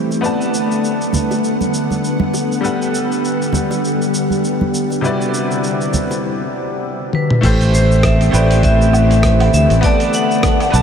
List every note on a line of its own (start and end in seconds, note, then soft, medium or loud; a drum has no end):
0.00 0.21 E3 medium
0.00 0.19 A3 medium
0.00 2.60 A3 medium
0.00 0.21 C4 medium
0.00 0.20 E4 medium
0.00 0.20 G4 medium
0.00 0.21 G4 medium
0.00 0.20 B4 medium
0.00 0.21 C5 medium
0.11 high bongo soft
0.11 cabasa soft
0.21 4.99 D3 medium
0.21 2.59 B3 medium
0.21 6.19 B3 medium
0.21 2.60 B4 medium
0.21 2.60 D5 medium
0.21 6.19 F#5 medium
0.21 2.61 F#5 medium
0.21 cabasa soft
0.26 2.61 A5 medium
0.41 cabasa soft
0.54 cabasa medium
0.71 cabasa soft
0.84 cabasa soft
1.01 cabasa soft
1.13 high conga medium
1.13 low conga medium
1.13 cabasa medium
1.31 high bongo medium
1.31 cabasa soft
1.44 cabasa soft
1.61 high conga medium
1.61 cabasa soft
1.74 cabasa medium
1.90 high conga medium
1.90 cabasa soft
2.04 cabasa soft
2.20 high conga medium
2.34 high bongo medium
2.34 cabasa medium
2.52 cabasa soft
2.61 4.99 G3 medium
2.61 5.02 G3 medium
2.61 5.00 G4 medium
2.61 5.00 A4 medium
2.61 5.01 B4 medium
2.61 cabasa soft
2.65 5.01 F#5 medium
2.82 cabasa soft
2.95 cabasa medium
3.12 cabasa soft
3.25 cabasa soft
3.42 cabasa soft
3.52 high conga medium
3.52 low conga medium
3.52 cabasa medium
3.71 high bongo medium
3.71 cabasa soft
3.85 cabasa soft
4.02 cabasa soft
4.14 cabasa medium
4.30 high conga medium
4.30 cabasa soft
4.44 cabasa soft
4.61 high conga medium
4.74 cabasa medium
4.90 high bongo soft
4.90 cabasa soft
5.01 6.22 C3 medium
5.01 6.22 D3 medium
5.01 6.23 G3 medium
5.01 6.22 C4 medium
5.01 6.23 E4 medium
5.01 6.22 E4 medium
5.01 6.24 F#4 medium
5.01 6.24 B4 medium
5.01 cabasa soft
5.06 6.25 D5 medium
5.21 cabasa soft
5.34 cabasa medium
5.51 cabasa soft
5.64 cabasa soft
5.81 cabasa soft
5.94 high conga medium
5.94 low conga medium
5.94 cabasa medium
6.11 high bongo medium
6.11 cabasa soft
7.13 7.45 B4 medium
7.13 high tom medium
7.30 mid tom medium
7.41 8.28 A1 loud
7.41 9.81 E3 medium
7.41 8.29 A3 medium
7.41 10.82 A3 medium
7.41 9.81 C4 medium
7.41 8.30 E4 medium
7.41 8.30 G4 medium
7.41 9.81 G4 medium
7.41 8.31 A4 medium
7.41 7.74 C5 medium
7.41 kick loud
7.41 open hi-hat medium
7.41 crash loud
7.41 cabasa soft
7.46 8.31 C5 medium
7.61 open hi-hat soft
7.61 cabasa soft
7.74 8.05 C5 medium
7.74 cabasa medium
7.91 cabasa soft
8.03 8.18 E5 medium
8.03 kick loud
8.03 cross-stick loud
8.03 open hi-hat medium
8.03 cabasa soft
8.21 open hi-hat soft
8.21 cabasa soft
8.31 9.48 A1 medium
8.31 9.79 A3 medium
8.31 9.80 E4 medium
8.31 9.80 G4 medium
8.31 9.80 B4 medium
8.31 8.65 D5 medium
8.31 cabasa medium
8.36 9.82 C5 loud
8.51 open hi-hat medium
8.51 cabasa soft
8.63 9.53 E5 medium
8.63 kick medium
8.63 open hi-hat medium
8.63 cabasa soft
8.82 cabasa soft
8.93 cabasa medium
8.93 low woodblock medium
9.11 open hi-hat soft
9.11 cabasa soft
9.23 kick medium
9.23 cross-stick loud
9.23 open hi-hat medium
9.23 cabasa soft
9.40 open hi-hat soft
9.40 low woodblock medium
9.53 9.66 D2 medium
9.53 9.67 E5 medium
9.53 cabasa medium
9.70 9.80 A1 medium
9.70 open hi-hat soft
9.70 cabasa soft
9.81 10.82 D3 medium
9.81 10.69 B3 medium
9.81 10.82 B3 medium
9.81 10.70 B4 medium
9.81 10.70 D5 medium
9.81 10.12 D5 medium
9.81 10.71 F#5 medium
9.81 kick loud
9.81 open hi-hat medium
9.81 cabasa soft
9.86 10.71 A5 medium
10.00 open hi-hat soft
10.00 cabasa soft
10.14 10.76 F#5 loud
10.14 cabasa medium
10.31 cabasa soft
10.43 kick loud
10.43 cross-stick loud
10.43 open hi-hat medium
10.43 cabasa soft
10.60 open hi-hat soft
10.60 cabasa soft
10.60 low woodblock medium
10.70 10.82 B1 medium
10.70 10.82 B3 medium
10.70 10.82 B4 medium
10.70 10.82 D5 medium
10.70 10.82 F#5 medium
10.70 10.82 A5 loud
10.70 cabasa medium
10.75 10.82 A5 loud